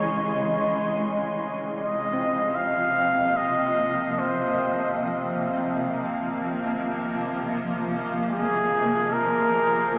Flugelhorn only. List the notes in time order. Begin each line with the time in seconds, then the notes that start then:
Already playing: C#5
1.75 D#5
2.55 F5
3.37 D#5
4.19 C5
8.31 G#4
9.13 A#4